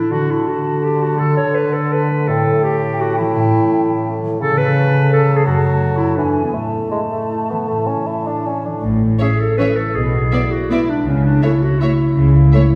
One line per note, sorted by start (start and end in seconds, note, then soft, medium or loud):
0.00 0.14 A2 soft
0.00 0.13 E3 soft
0.00 1.02 A3 soft
0.00 0.13 E4 soft
0.00 0.47 A4 soft
0.11 2.30 D3 soft
0.11 1.19 D3 soft
0.11 0.32 F#4 soft
0.11 2.23 A5 soft
0.29 0.65 D4 soft
0.29 0.50 E4 soft
0.48 0.85 F#4 soft
0.48 0.84 A4 soft
0.66 1.36 D4 soft
0.84 1.04 G4 soft
0.84 1.55 A4 soft
1.03 2.09 A3 soft
1.03 1.20 F#4 soft
1.19 2.29 D3 soft
1.19 1.37 A4 medium
1.37 1.74 D4 soft
1.37 1.57 C#5 medium
1.55 1.92 A4 soft
1.55 1.75 B4 soft
1.74 2.29 D4 soft
1.74 1.94 A4 medium
1.93 4.74 A4 soft
1.93 2.29 B4 medium
2.10 2.44 A3 soft
2.27 3.35 A2 soft
2.27 4.39 A2 soft
2.27 2.65 A4 medium
2.27 4.12 G5 soft
2.46 3.51 A3 soft
2.64 3.01 C#4 soft
2.64 3.02 G4 medium
2.84 3.87 G4 soft
3.01 3.70 C#4 soft
3.01 3.18 F#4 medium
3.18 4.23 E3 soft
3.18 4.21 E4 medium
3.36 4.42 A2 medium
3.53 5.28 A3 soft
3.71 4.06 C#4 soft
3.89 4.41 G4 soft
4.08 4.56 C#4 soft
4.24 4.42 E3 soft
4.39 5.43 C#3 medium
4.39 5.47 C#3 medium
4.39 4.60 A4 medium
4.39 6.14 A5 soft
4.57 4.93 C#4 soft
4.57 5.12 B4 medium
4.75 5.11 A4 soft
4.94 5.48 C#4 soft
5.12 5.99 A4 soft
5.12 5.38 A4 medium
5.29 5.62 A3 soft
5.37 5.45 G#4 medium
5.45 6.20 F#2 soft
5.45 6.16 F#3 soft
5.45 5.97 F#4 medium
5.63 6.20 A3 soft
5.81 6.56 D4 soft
5.97 6.18 E4 medium
5.97 6.20 A4 soft
6.17 6.57 E2 soft
6.17 6.56 E3 soft
6.17 6.46 D4 soft
6.17 6.55 G#5 soft
6.37 6.91 E4 soft
6.37 6.57 G#4 soft
6.44 6.55 B3 soft
6.53 7.69 A2 soft
6.53 8.46 A3 soft
6.53 6.88 A3 soft
6.53 8.61 A5 soft
6.73 7.88 C#4 soft
6.91 7.00 G#3 soft
6.91 7.32 E4 soft
7.12 7.53 A3 soft
7.12 8.27 A4 soft
7.33 8.08 E4 soft
7.51 8.65 E3 soft
7.51 7.70 B3 soft
7.68 8.83 A2 soft
7.68 7.88 A3 soft
7.87 8.08 C#4 soft
7.87 9.78 C#4 soft
8.07 8.28 E4 soft
8.07 8.46 E4 soft
8.27 8.48 D4 soft
8.27 9.20 A4 soft
8.46 8.67 C#4 soft
8.46 9.01 E4 soft
8.66 8.85 E3 soft
8.66 8.83 D4 soft
8.83 9.14 A1 soft
8.83 9.14 A2 soft
8.83 9.97 A2 soft
9.02 9.39 E4 soft
9.19 9.29 C#4 soft
9.19 9.42 G#4 medium
9.19 9.27 C#5 soft
9.19 9.28 E5 soft
9.40 10.13 E4 soft
9.40 9.57 A4 soft
9.58 9.97 E3 soft
9.58 9.67 C#4 soft
9.58 9.78 B4 medium
9.58 9.67 C#5 soft
9.58 9.68 E5 soft
9.77 9.97 C#4 soft
9.77 9.97 A4 medium
9.95 10.26 B1 soft
9.95 10.26 B2 soft
9.95 11.08 B2 soft
9.95 10.52 G#4 medium
10.15 10.51 E4 soft
10.32 10.40 B3 soft
10.32 10.41 D5 soft
10.32 11.08 D5 soft
10.32 10.40 E5 soft
10.51 11.24 E4 soft
10.51 10.70 F#4 medium
10.70 11.08 G#3 soft
10.70 10.78 B3 soft
10.70 10.91 E4 soft
10.70 10.78 D5 soft
10.70 10.80 E5 soft
10.89 11.08 B3 soft
10.89 11.07 D4 soft
11.06 11.36 C#2 soft
11.06 11.36 C#3 soft
11.06 12.16 C#3 soft
11.06 11.27 C#4 soft
11.25 11.42 D4 medium
11.25 11.62 E4 soft
11.42 11.51 A3 soft
11.42 11.64 E4 medium
11.42 11.50 C#5 soft
11.42 12.52 C#5 soft
11.42 11.50 E5 soft
11.62 12.34 E4 soft
11.62 11.82 F#4 medium
11.80 11.89 A3 soft
11.80 12.75 C#4 soft
11.80 12.75 E4 medium
11.80 11.89 C#5 soft
11.80 11.89 E5 soft
12.00 12.75 A3 soft
12.16 12.47 C#2 soft
12.16 12.47 C#3 soft
12.16 12.75 C#3 soft
12.35 12.72 E4 soft
12.52 12.62 A3 soft
12.52 12.75 C#5 soft
12.52 12.62 C#5 soft
12.52 12.60 E5 soft